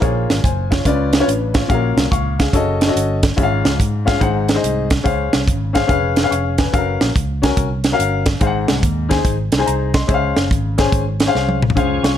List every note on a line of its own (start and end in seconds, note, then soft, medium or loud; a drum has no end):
0.00 0.25 A#1 medium
0.00 0.67 A#2 medium
0.00 0.38 A#3 medium
0.00 0.27 D#4 medium
0.00 0.38 F4 medium
0.00 0.38 G#4 medium
0.00 0.27 C5 medium
0.00 0.39 C#5 medium
0.00 kick loud
0.00 closed hi-hat medium
0.30 0.42 G#1 medium
0.30 snare medium
0.30 closed hi-hat medium
0.44 0.80 F#1 medium
0.44 0.70 C5 medium
0.44 0.70 G#5 medium
0.44 kick medium
0.44 closed hi-hat medium
0.71 0.84 F4 medium
0.71 1.11 C#5 medium
0.71 kick medium
0.71 snare medium
0.71 closed hi-hat medium
0.85 1.21 C#2 medium
0.85 1.51 C#3 medium
0.85 1.16 C#4 medium
0.85 1.16 F4 medium
0.85 1.16 B4 medium
0.85 1.17 D5 loud
0.85 kick medium
0.85 closed hi-hat loud
1.13 snare loud
1.13 closed hi-hat medium
1.20 1.27 C#4 medium
1.20 1.27 F4 medium
1.20 1.26 B4 medium
1.20 1.28 C#5 loud
1.27 1.63 A1 medium
1.27 1.54 D4 soft
1.27 1.53 B4 medium
1.27 closed hi-hat medium
1.54 1.95 F4 medium
1.54 1.94 C#5 medium
1.54 kick loud
1.54 snare loud
1.54 closed hi-hat medium
1.68 1.93 A#1 medium
1.68 2.34 A#2 medium
1.68 2.05 C#4 medium
1.68 2.06 F#4 medium
1.68 1.76 G#4 medium
1.68 2.06 F5 medium
1.68 kick medium
1.68 closed hi-hat medium
1.74 2.08 A#4 medium
1.97 2.09 C2 loud
1.97 snare medium
1.97 closed hi-hat medium
2.11 2.47 C#2 medium
2.11 2.38 F5 medium
2.11 2.37 C#6 medium
2.11 kick medium
2.11 closed hi-hat medium
2.39 2.79 G#4 medium
2.39 2.79 F5 medium
2.39 kick medium
2.39 snare loud
2.39 closed hi-hat medium
2.53 2.89 F#1 loud
2.53 2.84 C#4 medium
2.53 2.84 F#4 medium
2.53 2.84 A4 medium
2.53 2.85 D#5 loud
2.53 kick medium
2.53 closed hi-hat medium
2.81 snare medium
2.81 closed hi-hat medium
2.87 3.18 C#4 medium
2.87 3.19 F#4 medium
2.87 3.19 A4 medium
2.87 3.19 D#5 medium
2.96 3.31 G1 medium
2.96 closed hi-hat medium
3.23 kick loud
3.23 snare loud
3.23 closed hi-hat medium
3.36 3.61 G#1 medium
3.36 4.03 G#2 medium
3.36 3.73 C#4 medium
3.36 3.74 F4 medium
3.36 3.74 G#4 medium
3.36 3.44 E5 medium
3.36 kick loud
3.36 closed hi-hat medium
3.43 3.77 F5 medium
3.65 3.77 C#2 loud
3.65 snare medium
3.65 closed hi-hat medium
3.80 4.15 G#2 medium
3.80 kick medium
3.80 closed hi-hat medium
4.05 4.21 C#4 medium
4.05 4.21 F4 medium
4.05 4.19 G#4 medium
4.05 4.21 F5 medium
4.05 kick medium
4.05 snare medium
4.05 closed hi-hat medium
4.20 4.57 G#1 medium
4.20 4.86 G#2 medium
4.20 4.51 D#4 medium
4.20 4.51 G#4 medium
4.20 4.51 C5 medium
4.20 4.52 F#5 medium
4.20 kick medium
4.20 closed hi-hat medium
4.49 snare loud
4.49 closed hi-hat medium
4.54 4.86 D#4 medium
4.54 4.86 G#4 medium
4.54 4.86 C5 medium
4.54 4.87 D#5 medium
4.64 4.99 C2 medium
4.64 closed hi-hat medium
4.90 kick loud
4.90 snare loud
4.90 closed hi-hat medium
5.03 5.29 C#2 medium
5.03 5.70 C#3 medium
5.03 5.41 C#4 medium
5.03 5.41 G#4 medium
5.03 5.41 C5 medium
5.03 5.42 F5 medium
5.03 kick medium
5.03 closed hi-hat medium
5.33 5.49 C2 medium
5.33 snare loud
5.33 closed hi-hat medium
5.48 5.83 G#1 medium
5.48 kick medium
5.48 closed hi-hat medium
5.73 5.86 C#4 medium
5.73 5.86 G#4 medium
5.73 5.89 C5 medium
5.73 5.87 F5 medium
5.73 kick medium
5.73 snare medium
5.73 closed hi-hat medium
5.87 6.25 F1 loud
5.87 6.19 C#4 medium
5.87 6.19 G#4 medium
5.87 6.19 B4 medium
5.87 6.19 F5 loud
5.87 kick loud
5.87 closed hi-hat medium
6.16 snare medium
6.16 closed hi-hat medium
6.22 6.54 C#4 medium
6.22 6.54 G#4 medium
6.22 6.31 B4 medium
6.22 6.30 F5 medium
6.31 6.67 F1 medium
6.31 6.57 F5 soft
6.31 6.57 C#6 medium
6.31 closed hi-hat medium
6.58 6.99 B4 medium
6.58 6.99 G#5 medium
6.58 kick loud
6.58 snare loud
6.58 closed hi-hat medium
6.72 6.97 F#1 medium
6.72 7.09 C#4 medium
6.72 7.10 F#4 medium
6.72 6.80 A4 medium
6.72 7.10 F5 medium
6.72 kick medium
6.72 closed hi-hat medium
6.78 7.12 A#4 medium
7.01 7.13 A#1 medium
7.01 snare loud
7.01 closed hi-hat medium
7.16 7.51 C#2 medium
7.16 kick medium
7.16 closed hi-hat medium
7.42 7.67 C#4 medium
7.42 7.67 F#4 medium
7.42 7.67 A#4 medium
7.42 7.68 G#5 medium
7.42 kick medium
7.42 snare loud
7.42 closed hi-hat medium
7.57 7.93 C2 medium
7.57 kick medium
7.57 closed hi-hat medium
7.84 snare loud
7.84 closed hi-hat medium
7.92 8.23 C#4 medium
7.92 8.23 F#4 medium
7.92 8.23 A#4 medium
7.92 8.24 F5 loud
7.99 8.35 G1 medium
7.99 closed hi-hat loud
8.26 kick loud
8.26 snare loud
8.26 closed hi-hat medium
8.40 8.64 G#1 medium
8.40 9.06 G#2 medium
8.40 8.77 D#4 medium
8.40 8.78 G#4 medium
8.40 8.78 C5 medium
8.40 8.48 F5 medium
8.40 kick loud
8.40 closed hi-hat medium
8.47 8.81 F#5 medium
8.68 8.81 C2 medium
8.68 snare loud
8.68 closed hi-hat medium
8.83 9.19 D#2 medium
8.83 kick medium
8.83 closed hi-hat medium
9.09 9.34 D#4 medium
9.09 9.34 G#4 medium
9.09 9.35 C5 medium
9.09 9.35 G#5 medium
9.09 kick medium
9.09 snare medium
9.09 closed hi-hat medium
9.24 9.48 G#1 medium
9.24 kick medium
9.24 closed hi-hat medium
9.52 9.65 C2 medium
9.52 snare loud
9.52 closed hi-hat medium
9.57 9.90 D#4 medium
9.57 9.90 G#4 medium
9.57 9.90 C5 medium
9.57 9.67 G#5 medium
9.66 10.03 C2 medium
9.66 9.93 A#5 medium
9.66 closed hi-hat medium
9.94 10.35 D#5 medium
9.94 10.34 C6 medium
9.94 kick loud
9.94 snare loud
9.94 closed hi-hat medium
10.07 10.32 C#2 medium
10.07 10.74 C#3 medium
10.07 10.45 C#4 medium
10.07 10.45 G#4 medium
10.07 10.45 C5 medium
10.07 10.16 E5 medium
10.07 kick loud
10.07 closed hi-hat medium
10.14 10.48 F5 medium
10.36 10.51 F#1 medium
10.36 snare medium
10.36 closed hi-hat medium
10.51 10.87 G#1 medium
10.51 kick medium
10.51 closed hi-hat medium
10.78 11.03 C#4 medium
10.78 11.03 G#4 medium
10.78 11.03 C5 medium
10.78 11.03 G#5 medium
10.78 kick medium
10.78 snare loud
10.78 closed hi-hat medium
10.92 11.28 G#1 medium
10.92 kick medium
10.92 closed hi-hat medium
11.20 snare loud
11.20 closed hi-hat medium
11.26 11.58 C#4 medium
11.26 11.58 G#4 medium
11.26 11.58 C5 medium
11.26 11.59 F5 medium
11.35 11.71 C2 medium
11.35 snare medium
11.49 high tom medium
11.62 mid tom medium
11.70 floor tom medium
11.75 12.00 C#2 medium
11.75 12.18 C#3 medium
11.75 12.18 F3 medium
11.75 12.13 C#4 medium
11.75 12.18 C#4 medium
11.75 12.13 G#4 medium
11.75 12.18 G#4 medium
11.75 12.13 C5 medium
11.75 12.02 F5 medium
11.75 kick medium
11.75 closed hi-hat medium
12.03 12.16 C2 medium
12.03 12.18 F5 soft
12.03 12.17 C#6 medium
12.03 snare loud
12.03 closed hi-hat medium